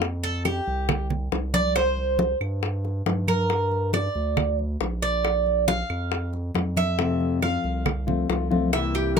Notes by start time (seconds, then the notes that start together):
Already playing: F2
0.02 high bongo, high conga
0.23 A4, high conga
0.45 G4, high bongo, high conga, claves
0.67 C2, high conga
0.89 high bongo, high conga, low conga, claves
1.10 high conga, low conga
1.32 C2, high bongo, low bongo, high conga
1.54 D5, high conga
1.76 C5, high bongo, high conga, claves
1.97 high conga
2.19 high bongo, high conga
2.40 G2, high bongo, claves
2.62 high bongo, high conga
2.85 high bongo, high conga
3.06 G2, high bongo, low bongo, high conga
3.28 A#4, high bongo, high conga, claves
3.50 high bongo
3.71 high conga
3.93 D5, high bongo, high conga, claves
4.15 D2, high conga
4.37 high bongo, high conga, low conga, claves
4.59 high conga
4.81 A#1, high bongo, low bongo, high conga
5.02 D5
5.24 high bongo, high conga, claves
5.46 high conga
5.68 F5, high bongo, high conga
5.90 F2, high bongo, claves
6.12 high bongo, high conga
6.33 high bongo, high conga
6.55 F2, high bongo, low bongo, high conga
6.77 E5, high bongo, high conga, claves
6.98 C3 F3 A3 C4 F4, high bongo
7.20 high conga
7.42 F3 A3 C4 F4 F5, high bongo, high conga, claves
7.64 C2, high conga
7.86 muted nylon-string guitar stroke, high bongo, high conga, low conga, claves
8.07 F3 A3 C4 F4, high conga, low conga
8.29 C2 F3 A3 C4 F4, high bongo, low bongo, high conga
8.50 F3 A3 C4 F4, high conga
8.72 C3 E3 A#3 C4 E4 E5, high bongo, claves
8.95 G4, high conga
9.16 E3 A#4, high bongo, high conga